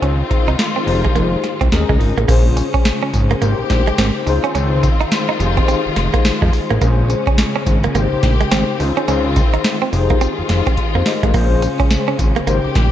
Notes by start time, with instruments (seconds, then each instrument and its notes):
Already playing: string section D#3 C4 F4, tine electric piano D#4 F4 G#4 C5
0.02 analog synth bass C#2, clean electric guitar C#4, closed hi-hat
0.31 muted clean electric guitar stroke, kick, closed hi-hat
0.48 analog synth bass C2, clean electric guitar D#4, closed hi-hat
0.59 snare, closed hi-hat
0.76 clean electric guitar C4
0.87 analog synth bass F1, string section G#3, tine electric piano D#4 G4 G#4 C5, muted clean electric guitar stroke, open hi-hat
1.04 clean electric guitar G#3, kick, closed hi-hat
1.15 analog synth bass F1, clean electric guitar A#3, closed hi-hat
1.44 muted clean electric guitar stroke, snare, closed hi-hat
1.61 analog synth bass C2, clean electric guitar C4, kick, closed hi-hat
1.72 analog synth bass D#2, string section C#3 G#3 D#4, tine electric piano C#4 F4 G#4 A#4, snare, closed hi-hat
1.89 analog synth bass C#2, clean electric guitar G#3, kick
2.00 analog synth bass G#1, muted clean electric guitar stroke, open hi-hat
2.18 analog synth bass A1, clean electric guitar A#3, closed hi-hat
2.28 analog synth bass A#1, string section C#3 G#3 C#4, clean electric guitar A#3, tine electric piano C#4 F4 G#4 C5, kick, closed hi-hat, crash, tambourine
2.57 muted clean electric guitar stroke, closed hi-hat, tambourine
2.74 clean electric guitar C#4, kick, closed hi-hat
2.85 snare, closed hi-hat, tambourine
3.03 clean electric guitar C#4
3.13 analog synth bass G#1, muted clean electric guitar stroke, kick, closed hi-hat, tambourine
3.31 clean electric guitar A#3, closed hi-hat
3.42 analog synth bass G#1, clean electric guitar A#3, tine electric piano D#4 G4 A#4 C5, string section G4, closed hi-hat, tambourine
3.59 analog synth bass A#1
3.70 analog synth bass A#1, muted clean electric guitar stroke, kick, snare, closed hi-hat
3.87 clean electric guitar G#3, closed hi-hat
3.98 analog synth bass G#1, clean electric guitar C4, snare, closed hi-hat, tambourine
4.26 analog synth bass C#2, string section D#3 C4 F4, tine electric piano D#4 F4 G#4 C5, muted clean electric guitar stroke, open hi-hat, tambourine
4.44 clean electric guitar C#4, closed hi-hat
4.55 analog synth bass C#2, clean electric guitar C#4, closed hi-hat, tambourine
4.83 muted clean electric guitar stroke, kick, closed hi-hat, tambourine
5.01 clean electric guitar D#4, closed hi-hat
5.12 snare, closed hi-hat, tambourine
5.29 clean electric guitar D#4
5.40 analog synth bass F1, string section G#3, tine electric piano D#4 G4 G#4 C5, muted clean electric guitar stroke, closed hi-hat, tambourine
5.57 clean electric guitar C4, kick, closed hi-hat
5.68 clean electric guitar C4, closed hi-hat, tambourine
5.86 analog synth bass F1
5.96 analog synth bass F1, muted clean electric guitar stroke, snare, closed hi-hat
6.14 clean electric guitar A#3, kick, closed hi-hat
6.25 snare, closed hi-hat, tambourine
6.42 analog synth bass F2, clean electric guitar G#3, kick
6.53 muted clean electric guitar stroke, open hi-hat, tambourine
6.70 analog synth bass A1, clean electric guitar A#3, closed hi-hat
6.81 analog synth bass A#1, string section C#3 C#4, clean electric guitar A#3, tine electric piano C#4 F4 G#4 C5, kick, closed hi-hat, tambourine
7.10 muted clean electric guitar stroke, closed hi-hat, tambourine
7.27 clean electric guitar C#4, kick, closed hi-hat
7.38 snare, closed hi-hat, tambourine
7.56 clean electric guitar C#4
7.66 analog synth bass G#1, muted clean electric guitar stroke, kick, closed hi-hat, tambourine
7.84 clean electric guitar A#3, closed hi-hat
7.95 analog synth bass G#1, clean electric guitar A#3, tine electric piano D#4 G4 A#4 C5, string section G4, closed hi-hat, tambourine
8.12 analog synth bass A#1
8.23 analog synth bass A#1, muted clean electric guitar stroke, kick, snare, closed hi-hat
8.41 clean electric guitar G#3, closed hi-hat
8.51 analog synth bass G#1, clean electric guitar C4, snare, closed hi-hat, tambourine
8.79 analog synth bass C#2, string section D#3 C4 F4, tine electric piano D#4 F4 G#4 C5, muted clean electric guitar stroke, open hi-hat, tambourine
8.97 clean electric guitar C#4, closed hi-hat
9.08 analog synth bass C#2, clean electric guitar C#4, closed hi-hat, tambourine
9.36 muted clean electric guitar stroke, kick, closed hi-hat, tambourine
9.54 clean electric guitar D#4, closed hi-hat
9.64 snare, closed hi-hat, tambourine
9.82 clean electric guitar C4
9.92 analog synth bass F1, string section D#3 G#3 F4, tine electric piano D#4 G4 G#4 C5, muted clean electric guitar stroke, open hi-hat, tambourine
10.10 clean electric guitar A#3, kick, closed hi-hat
10.21 clean electric guitar C4, closed hi-hat, tambourine
10.39 analog synth bass F1
10.49 analog synth bass F1, muted clean electric guitar stroke, snare, closed hi-hat
10.67 clean electric guitar C4, kick, closed hi-hat
10.77 kick, closed hi-hat
10.95 analog synth bass F2, clean electric guitar A#3, tine electric piano G4 C5
11.06 tine electric piano A#4 D#5, muted clean electric guitar stroke, snare, open hi-hat
11.23 analog synth bass A1, clean electric guitar G#3, tine electric piano C5 F5, kick, closed hi-hat
11.34 analog synth bass A#1, string section C#3 C#4, clean electric guitar A#3, tine electric piano C#4 F4 G#4 C5, kick, crash, tambourine
11.62 muted clean electric guitar stroke, closed hi-hat, tambourine
11.80 clean electric guitar C#4, kick, closed hi-hat
11.90 snare, closed hi-hat, tambourine
12.08 clean electric guitar C#4
12.19 analog synth bass G#1, muted clean electric guitar stroke, kick, closed hi-hat, tambourine
12.36 clean electric guitar A#3, closed hi-hat
12.47 analog synth bass G#1, clean electric guitar A#3, tine electric piano D#4 G4 A#4 C5, string section G4, closed hi-hat, tambourine
12.65 analog synth bass A#1
12.75 analog synth bass A#1, muted clean electric guitar stroke, kick, snare, closed hi-hat